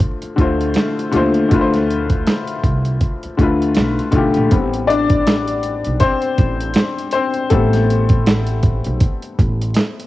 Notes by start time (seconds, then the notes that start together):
Already playing: D3 A3 F4 C5
0.00 kick
0.22 muted upright bass stroke, closed hi-hat
0.36 D2 D3 A3 F4, kick, closed hi-hat
0.41 C5
0.61 closed hi-hat
0.74 snare, closed hi-hat
0.99 closed hi-hat
1.11 D#2 D3 A3 F4, closed hi-hat
1.16 C5
1.34 closed hi-hat
1.49 D2 D3 A3 F4, kick, closed hi-hat
1.54 B4
1.61 C5
1.74 snare, closed hi-hat
1.90 closed hi-hat
2.10 kick, closed hi-hat
2.27 snare, closed hi-hat
2.48 closed hi-hat
2.64 C2, kick, closed hi-hat
2.85 closed hi-hat
3.01 kick, closed hi-hat
3.23 muted upright bass stroke, closed hi-hat
3.37 D2 D3 A3 F4, kick, closed hi-hat
3.42 B4
3.62 closed hi-hat
3.75 B1, snare, closed hi-hat
3.99 closed hi-hat
4.11 B1 D3 A3 F4, kick, closed hi-hat
4.17 G4
4.34 A#1, closed hi-hat
4.50 A1 G3 B3 C4, kick, closed hi-hat
4.73 closed hi-hat
4.87 D4 D5, closed hi-hat
5.09 kick, closed hi-hat
5.27 snare, closed hi-hat
5.48 closed hi-hat
5.63 closed hi-hat
5.84 B1, closed hi-hat
6.00 C4 C5, kick, closed hi-hat
6.22 closed hi-hat
6.38 A1, kick, closed hi-hat
6.61 closed hi-hat
6.74 snare, closed hi-hat
6.99 closed hi-hat
7.11 C4 C5, closed hi-hat
7.34 closed hi-hat
7.50 A1 G3 A3 B3 C4 A4, kick, closed hi-hat
7.73 snare, closed hi-hat
7.90 closed hi-hat
8.09 kick, closed hi-hat
8.26 snare, closed hi-hat
8.47 closed hi-hat
8.63 kick, closed hi-hat
8.84 B1, closed hi-hat
9.00 kick, closed hi-hat
9.22 closed hi-hat
9.39 A1, kick, closed hi-hat
9.62 closed hi-hat
9.74 snare, closed hi-hat
10.00 closed hi-hat